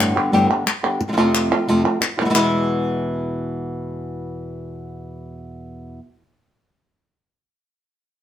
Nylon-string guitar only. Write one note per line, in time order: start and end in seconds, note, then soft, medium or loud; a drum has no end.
0.00 0.15 G2 medium
0.00 0.16 A2 loud
0.00 0.15 D3 loud
0.00 0.16 G3 medium
0.00 0.15 B3 loud
0.00 0.14 G4 loud
0.16 0.32 D3 medium
0.16 0.32 G3 medium
0.16 0.32 B3 medium
0.16 0.32 G4 medium
0.32 0.49 G2 medium
0.32 0.49 A2 loud
0.32 0.49 D3 medium
0.32 0.49 G3 loud
0.32 0.48 B3 loud
0.32 0.48 G4 loud
0.49 0.65 D3 medium
0.49 0.66 G3 medium
0.49 0.66 B3 medium
0.49 0.66 G4 medium
0.66 muted nylon-string guitar stroke medium
0.83 1.01 D3 soft
0.83 1.00 G3 soft
0.83 1.00 B3 medium
0.83 1.00 G4 medium
1.01 muted nylon-string guitar stroke medium
1.08 1.11 C3 soft
1.08 1.12 F3 medium
1.08 1.12 A3 medium
1.08 1.12 C4 medium
1.08 1.13 F4 medium
1.12 1.16 C3 medium
1.12 1.17 F3 medium
1.12 1.16 A3 medium
1.12 1.16 C4 medium
1.12 1.17 F4 medium
1.17 1.50 F2 medium
1.17 1.50 C3 medium
1.17 1.50 F3 medium
1.17 1.50 A3 medium
1.17 1.50 C4 medium
1.17 1.50 F4 loud
1.51 1.67 F3 soft
1.51 1.67 A3 medium
1.51 1.67 C4 medium
1.51 1.67 F4 medium
1.68 1.84 F2 medium
1.68 1.84 C3 medium
1.68 1.84 F3 medium
1.68 1.84 A3 loud
1.68 1.83 C4 medium
1.68 1.83 F4 loud
1.84 1.99 F3 medium
1.84 2.00 A3 medium
1.84 2.00 C4 medium
1.84 2.00 F4 medium
2.00 muted nylon-string guitar stroke medium
2.17 2.24 B2 medium
2.17 2.24 E3 medium
2.17 2.21 A3 soft
2.17 2.21 C4 medium
2.17 2.21 F4 medium
2.21 2.29 B2 medium
2.21 2.29 E3 medium
2.21 2.25 G#3 medium
2.21 2.25 B3 medium
2.21 2.25 E4 medium
2.26 2.33 B2 medium
2.26 2.34 E3 medium
2.26 2.29 G#3 medium
2.26 2.29 B3 medium
2.26 2.30 E4 medium
2.30 5.98 E2 medium
2.30 5.98 B2 medium
2.30 2.34 G#3 medium
2.30 2.34 B3 medium
2.30 2.34 E4 medium
2.35 5.99 E3 loud
2.35 5.99 G#3 loud
2.35 6.00 B3 loud
2.35 5.99 E4 loud